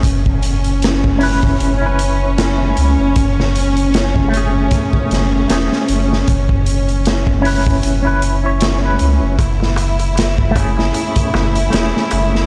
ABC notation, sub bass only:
X:1
M:4/4
L:1/16
Q:"Swing 16ths" 1/4=77
K:Bdor
V:1 name="Sub bass" clef=bass
F,,,8 F,,,6 C,, F,,, | F,,,8 z2 F,,,2 E,,, z F,,,2 | F,,,8 F,,,6 C,, F,,, | F,,,8 z2 F,,,2 E,,, z F,,,2 |]